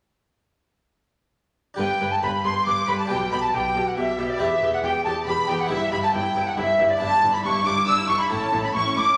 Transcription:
1.74 G1 D4 G4 B4
1.79 G2 B4 G5
2.00 G1 G2 B4
2.12 A5
2.22 G1 G2 B4 B5
2.44 G1 G2 B4 C6
2.66 G1 G2 B4 D6
2.87 G1 G2 B4 B5
2.98 A5
3.06 D4 G4 B4 G5
3.10 B1 B2 G4
3.31 B1 B2 G4 B5
3.42 A5
3.53 B1 B2 G4 G5
3.75 B1 B2 G4
3.87 F#5
3.97 B1 B2 G4 E5
4.18 B1 B2 G4
4.30 D5
4.37 E1 E2 E4 G4 B4 E5
4.41 E2 E5
4.62 E1 E2 G4
4.73 F#5
4.83 E1 E2 G4 G5
5.04 E1 E2 G4 A5
5.26 E1 E2 G4 B5
5.48 E1 E2 G4 G5
5.59 F#5
5.66 E4 G4 B4 E5
5.70 G1 G2 E4 E5
5.91 G1 G2 E4 B5
6.03 A5
6.13 G1 G2 E4 G5
6.35 G1 G2 E4
6.46 F#5
6.57 G1 G2 E4 E5
6.79 G1 G2 E4
6.90 D5
6.97 D4 E4 B4 A5
7.01 G1 G2 A5
7.11 E4
7.21 G1 G2 D4
7.32 E4 B5
7.43 G1 G2 D4 C#6
7.54 E4
7.64 G1 G2 D4 D6
7.75 E4
7.87 G1 G2 D4 E6
7.97 E4
8.08 G1 G2 D4 C#6
8.19 E4 B5
8.27 C#4 E4 A4
8.31 A1 A2 A5
8.41 C#4
8.52 A1 A2 E4
8.63 C#4 B5
8.74 A1 A2 E4 C#6
8.85 C#4
8.96 A1 A2 E4 D6
9.07 C#4

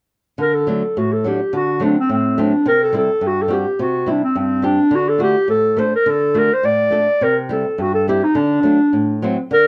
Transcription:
0.38 D3 A#4
0.54 A4
0.67 F#3 A3 D4 A4
0.97 A2 F#4
1.13 A4
1.24 F#3 A3 D4 G4
1.53 D3 F#4
1.80 F#3 A3 C4
1.84 D4
2.00 C4
2.09 A2 C4
2.38 F#3 A3 C4 D4
2.66 C3 A#4
2.83 A4
2.93 G3 C4 E4
2.97 A4
3.21 G2
3.27 F#4
3.42 A4
3.48 G3 C4 F#4
3.53 G4
3.79 C3 F#4
4.06 G3 C4 E4
4.11 D4
4.23 C4
4.35 G2 C4
4.62 G3 C4 D4 G4
4.91 D3
4.95 F#4
5.09 A4
5.18 A3 D4 F#4
5.22 G4
5.48 A2 A4
5.77 A3 D4 A4 C5
5.95 A#4
6.06 D3 A4
6.34 A3 D4 F#4 A#4
6.53 C5
6.63 A2 D5
6.91 A3 D4 A4
7.21 C3 A#4
7.49 G3 C4 E4 A4
7.78 G2 F#4
7.94 A4
8.08 G3 C4 E4 G4
8.23 D#4
8.35 D3 D4
8.63 F#3 A3 D4
8.93 A2
9.22 F#3 A3 C4
9.51 D3 A#4

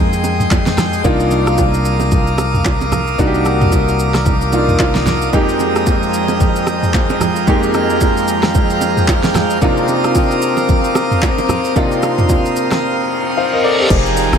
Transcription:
Already playing: F2 G#3 A#3 D#4 G#4 G5 C6 D#6
0.13 shaker
0.24 low bongo, shaker
0.40 mid tom, shaker
0.51 kick, clap, high bongo, shaker
0.66 snare, low bongo, shaker
0.77 cross-stick, snare, low conga, shaker
0.93 shaker
1.04 C2 A#3 D4 D#4 F4 A#4 F5 D6, kick, low conga, shaker
1.20 shaker
1.31 low bongo, shaker
1.47 cross-stick, shaker
1.58 kick, high bongo, shaker
1.74 shaker
1.85 shaker
2.00 low bongo, shaker
2.12 kick, low conga, shaker
2.27 shaker
2.38 cross-stick, low bongo, shaker
2.54 mid tom, shaker
2.65 kick, clap, high bongo, shaker
2.81 low bongo, shaker
2.92 cross-stick, low conga, shaker
3.07 shaker
3.18 C2 A#3 D4 D#4 F#4, kick, low conga, shaker
3.27 G4
3.34 shaker
3.45 cross-stick, low bongo, shaker
3.61 mid tom, shaker
3.72 kick, high bongo, shaker
3.88 shaker
3.99 shaker
4.14 cross-stick, snare, low bongo, shaker
4.26 kick, low conga, shaker
4.41 shaker
4.52 A#3 D4 D#4 F4, low bongo, shaker
4.68 mid tom, shaker
4.79 kick, clap, high bongo, shaker
4.95 snare, low bongo, shaker
5.06 snare, low conga, shaker
5.22 shaker
5.33 F2 F3 G#3 A#3 D#4 G4 G5 A#5, kick, low conga, shaker
5.49 shaker
5.60 low bongo, shaker
5.76 cross-stick, shaker
5.86 kick, high bongo, shaker
6.03 shaker
6.14 shaker
6.28 low bongo, shaker
6.40 kick, low conga, shaker
6.56 shaker
6.67 cross-stick, low bongo, shaker
6.83 mid tom, shaker
6.94 kick, clap, high bongo, shaker
7.10 low bongo, shaker
7.20 cross-stick, low conga, shaker
7.36 shaker
7.47 F2 G#3 A#3 D#4 G4 F6, kick, low conga, shaker
7.63 shaker
7.74 cross-stick, low bongo, shaker
7.90 shaker
8.01 kick, high bongo, shaker
8.17 shaker
8.28 shaker
8.43 cross-stick, snare, low bongo, shaker
8.55 kick, low conga, shaker
8.70 shaker
8.81 low bongo, shaker
8.97 mid tom, shaker
9.08 kick, clap, high bongo, shaker
9.23 snare, low bongo, shaker
9.35 cross-stick, snare, low conga, shaker
9.50 shaker
9.61 C3 A#3 C4 D4 D#4 F4 A#4 F5 D6 D#6, kick, low conga, shaker
9.77 shaker
9.88 low bongo, shaker
10.04 cross-stick, shaker
10.15 kick, high bongo, shaker
10.31 shaker
10.42 shaker
10.57 low bongo, shaker
10.69 kick, low conga, shaker
10.84 shaker
10.95 cross-stick, low bongo, shaker
11.11 mid tom, shaker
11.22 kick, clap, high bongo, shaker
11.38 low bongo, shaker
11.49 cross-stick, low conga, shaker
11.64 shaker
11.76 C3 A#3 D4 D#4 F4 C6, kick, low conga, shaker
11.92 shaker
12.02 cross-stick, low bongo, shaker
12.18 mid tom, shaker
12.29 kick, high bongo, shaker
12.45 shaker
12.56 shaker
12.71 cross-stick, snare, high bongo, low bongo, shaker
12.83 reverse cymbal
13.37 C5 F5
13.53 A#4 D#5
13.64 A4 D5
13.80 G4 C5
13.90 F1 F3 D#4 G4 G#4 A#4, kick, crash, downlifter, shaker
14.06 shaker
14.17 open hi-hat, shaker
14.33 F1, cross-stick, shaker

